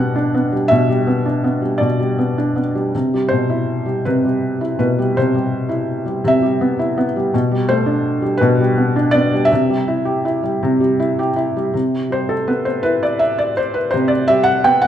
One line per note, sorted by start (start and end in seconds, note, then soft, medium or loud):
0.00 0.71 B2 medium
0.00 0.52 G3 soft
0.00 0.35 B3 soft
0.00 0.14 D4 soft
0.00 1.78 D5 medium
0.00 0.71 F#5 medium
0.16 1.24 D4 soft
0.35 1.06 B3 soft
0.52 0.88 G3 soft
0.68 1.79 B2 medium
0.68 1.84 E5 medium
0.89 1.61 G3 soft
1.07 1.43 B3 soft
1.26 2.37 D4 soft
1.44 2.17 B3 soft
1.62 1.99 G3 soft
1.78 2.90 B2 medium
1.78 2.60 D5 medium
2.00 2.74 G3 soft
2.18 2.54 B3 soft
2.38 2.92 D4 soft
2.56 2.92 B3 soft
2.75 2.93 G3 soft
2.95 4.04 C3 soft
3.14 3.84 G3 soft
3.29 4.77 B2 soft
3.29 4.01 C5 medium
3.50 4.60 E4 soft
3.86 4.23 G3 soft
4.05 5.16 C3 medium
4.05 4.76 B4 medium
4.25 4.97 G3 soft
4.61 5.68 E4 soft
4.79 6.21 B2 soft
4.79 5.18 B4 medium
4.99 5.33 G3 soft
5.17 6.23 C3 soft
5.17 6.22 C5 medium
5.34 6.04 G3 soft
5.69 6.78 E4 soft
6.06 6.41 G3 soft
6.24 7.29 C3 medium
6.24 7.04 E5 medium
6.42 7.15 G3 soft
6.61 6.96 B3 soft
6.79 7.31 E4 soft
6.98 7.32 B3 soft
7.16 7.33 G3 soft
7.34 8.40 B2 medium
7.52 8.21 G3 soft
7.69 9.10 A3 soft
7.69 8.37 C5 medium
7.86 8.95 D4 soft
8.22 8.59 G3 soft
8.37 9.47 B2 medium
8.37 9.14 B4 medium
8.60 9.32 G3 soft
8.78 9.13 B3 soft
8.96 9.49 D4 soft
9.11 9.50 B3 soft
9.11 9.47 D5 medium
9.33 9.51 G3 soft
9.45 11.30 E5 medium
9.52 10.61 C3 medium
9.70 10.42 G3 soft
9.88 10.23 E4 soft
10.05 11.17 G4 soft
10.25 10.98 E4 soft
10.43 10.79 G3 soft
10.63 11.71 C3 medium
10.80 11.55 G3 soft
11.00 11.35 E4 soft
11.19 11.73 G4 medium
11.36 11.73 E4 soft
11.57 11.74 G3 soft
11.74 13.88 C3 soft
12.10 13.52 G3 soft
12.10 12.31 C5 medium
12.29 12.48 A4 medium
12.48 13.89 B3 soft
12.48 12.67 B4 medium
12.65 12.83 C5 medium
12.83 14.25 E4 soft
12.83 13.00 B4 medium
13.03 13.21 D5 medium
13.19 13.39 E5 medium
13.38 13.57 D5 medium
13.57 13.75 C5 medium
13.74 13.93 B4 medium
13.91 14.87 C3 medium
13.91 14.10 C5 medium
14.08 14.28 D5 medium
14.28 14.87 G3 soft
14.28 14.47 E5 medium
14.44 14.64 F#5 medium
14.64 14.87 B3 soft
14.64 14.81 G5 medium
14.82 14.87 F#5 medium